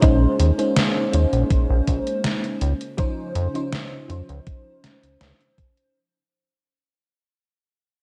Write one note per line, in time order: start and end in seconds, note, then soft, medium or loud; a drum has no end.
0.01 0.27 A#1 loud
0.01 0.54 G#3 medium
0.01 2.59 G#3 medium
0.01 2.59 A#3 medium
0.01 0.54 C#4 medium
0.01 2.59 C#4 medium
0.01 0.54 D#4 medium
0.01 0.54 C5 loud
0.01 kick loud
0.01 closed hi-hat medium
0.40 0.52 D#2 medium
0.40 closed hi-hat medium
0.58 1.09 G#3 medium
0.58 1.09 C#4 medium
0.58 1.09 D#4 medium
0.58 1.09 C5 medium
0.58 closed hi-hat medium
0.76 snare loud
0.76 closed hi-hat medium
1.12 1.26 D#2 medium
1.12 2.59 G#3 medium
1.12 2.59 C#4 medium
1.12 2.60 D#4 medium
1.12 2.60 C5 medium
1.12 closed hi-hat medium
1.33 1.44 A#1 loud
1.33 closed hi-hat medium
1.50 1.66 A#1 soft
1.50 kick loud
1.50 closed hi-hat medium
1.70 1.81 A#1 medium
1.87 2.00 A#1 medium
1.87 kick medium
1.87 closed hi-hat medium
2.07 closed hi-hat medium
2.24 snare loud
2.24 closed hi-hat medium
2.44 closed hi-hat soft
2.61 2.74 C#2 medium
2.61 5.92 C#3 medium
2.61 5.91 D#4 medium
2.61 5.92 F4 medium
2.61 5.91 C5 medium
2.61 closed hi-hat medium
2.81 closed hi-hat medium
2.97 3.50 F3 medium
2.97 3.50 C#4 medium
2.97 3.50 D#4 medium
2.97 3.51 C5 loud
2.97 kick loud
2.97 closed hi-hat medium
3.35 3.48 F2 medium
3.35 closed hi-hat medium
3.54 4.05 F3 medium
3.54 4.05 C#4 medium
3.54 4.05 D#4 medium
3.54 4.06 C5 medium
3.54 closed hi-hat medium
3.73 snare loud
3.73 closed hi-hat medium
4.08 4.22 F2 medium
4.08 5.90 F3 medium
4.08 5.90 C#4 medium
4.08 5.91 D#4 medium
4.08 5.91 C5 medium
4.08 closed hi-hat medium
4.29 4.40 C#2 loud
4.29 closed hi-hat medium
4.47 kick loud
4.47 closed hi-hat medium
4.84 snare medium
4.84 closed hi-hat medium
5.03 5.17 C#2 soft
5.03 closed hi-hat medium
5.21 5.33 C#2 loud
5.21 snare loud
5.21 closed hi-hat medium
5.41 closed hi-hat soft
5.58 kick loud
5.58 closed hi-hat medium
5.77 closed hi-hat medium